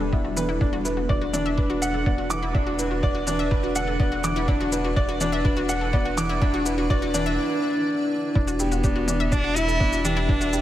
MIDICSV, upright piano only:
0, 0, Header, 1, 2, 480
1, 0, Start_track
1, 0, Tempo, 483871
1, 607, Time_signature, 4, 2, 24, 8
1, 10529, End_track
2, 0, Start_track
2, 0, Title_t, "Upright piano"
2, 0, Program_c, 0, 0
2, 0, Control_c, 0, 64, 127
2, 0, Note_on_c, 0, 62, 68
2, 0, Note_on_c, 0, 67, 71
2, 0, Note_on_c, 0, 71, 97
2, 0, Note_on_c, 0, 79, 90
2, 113, Note_off_c, 0, 62, 0
2, 125, Note_on_c, 0, 64, 68
2, 354, Note_off_c, 0, 64, 0
2, 366, Note_off_c, 0, 71, 0
2, 366, Note_on_c, 0, 71, 86
2, 595, Note_off_c, 0, 71, 0
2, 605, Note_on_c, 0, 62, 83
2, 621, Control_c, 0, 64, 0
2, 627, Note_off_c, 0, 67, 0
2, 629, Note_off_c, 0, 79, 0
2, 743, Note_off_c, 0, 62, 0
2, 802, Control_c, 0, 64, 127
2, 845, Note_on_c, 0, 71, 68
2, 1074, Note_off_c, 0, 71, 0
2, 1083, Note_on_c, 0, 74, 94
2, 1222, Note_off_c, 0, 74, 0
2, 1323, Note_on_c, 0, 62, 93
2, 1553, Note_off_c, 0, 62, 0
2, 1565, Note_on_c, 0, 71, 72
2, 1703, Note_off_c, 0, 71, 0
2, 1805, Note_on_c, 0, 78, 98
2, 1943, Note_off_c, 0, 78, 0
2, 2046, Note_on_c, 0, 74, 68
2, 2275, Note_off_c, 0, 74, 0
2, 2284, Note_on_c, 0, 86, 94
2, 2514, Note_off_c, 0, 86, 0
2, 2524, Note_on_c, 0, 62, 89
2, 2663, Note_off_c, 0, 62, 0
2, 2767, Note_on_c, 0, 71, 66
2, 2995, Note_off_c, 0, 71, 0
2, 3007, Note_on_c, 0, 74, 100
2, 3144, Note_off_c, 0, 74, 0
2, 3247, Note_on_c, 0, 62, 95
2, 3475, Note_off_c, 0, 62, 0
2, 3486, Note_on_c, 0, 71, 78
2, 3623, Note_off_c, 0, 71, 0
2, 3727, Note_on_c, 0, 78, 96
2, 3864, Note_off_c, 0, 78, 0
2, 3967, Note_on_c, 0, 74, 71
2, 4195, Note_off_c, 0, 74, 0
2, 4205, Note_on_c, 0, 86, 86
2, 4434, Note_off_c, 0, 86, 0
2, 4445, Note_on_c, 0, 62, 90
2, 4583, Note_off_c, 0, 62, 0
2, 4683, Note_on_c, 0, 71, 68
2, 4913, Note_off_c, 0, 71, 0
2, 4924, Note_on_c, 0, 74, 99
2, 5063, Note_off_c, 0, 74, 0
2, 5166, Note_on_c, 0, 62, 101
2, 5395, Note_off_c, 0, 62, 0
2, 5405, Note_on_c, 0, 71, 80
2, 5543, Note_off_c, 0, 71, 0
2, 5645, Note_on_c, 0, 78, 93
2, 5783, Note_off_c, 0, 78, 0
2, 5885, Note_on_c, 0, 74, 76
2, 6114, Note_off_c, 0, 74, 0
2, 6125, Note_on_c, 0, 86, 95
2, 6354, Note_off_c, 0, 86, 0
2, 6365, Note_on_c, 0, 62, 99
2, 6503, Note_off_c, 0, 62, 0
2, 6606, Note_on_c, 0, 71, 70
2, 6835, Note_off_c, 0, 71, 0
2, 6846, Note_on_c, 0, 74, 101
2, 6983, Note_off_c, 0, 74, 0
2, 7085, Note_on_c, 0, 62, 106
2, 7314, Note_off_c, 0, 62, 0
2, 8286, Note_on_c, 0, 62, 77
2, 8300, Control_c, 0, 64, 0
2, 8501, Control_c, 0, 64, 127
2, 8515, Note_off_c, 0, 62, 0
2, 8527, Note_on_c, 0, 67, 70
2, 8755, Note_off_c, 0, 67, 0
2, 8767, Note_on_c, 0, 62, 76
2, 8989, Note_off_c, 0, 62, 0
2, 9004, Note_on_c, 0, 62, 75
2, 9234, Note_off_c, 0, 62, 0
2, 9245, Note_on_c, 0, 74, 81
2, 9474, Note_off_c, 0, 74, 0
2, 9485, Note_on_c, 0, 64, 94
2, 9714, Note_off_c, 0, 64, 0
2, 9722, Note_on_c, 0, 62, 91
2, 9862, Note_off_c, 0, 62, 0
2, 9963, Note_on_c, 0, 67, 72
2, 10193, Note_off_c, 0, 67, 0
2, 10203, Note_on_c, 0, 62, 80
2, 10433, Note_off_c, 0, 62, 0
2, 10443, Note_on_c, 0, 67, 69
2, 10529, Note_off_c, 0, 67, 0
2, 10529, End_track
0, 0, End_of_file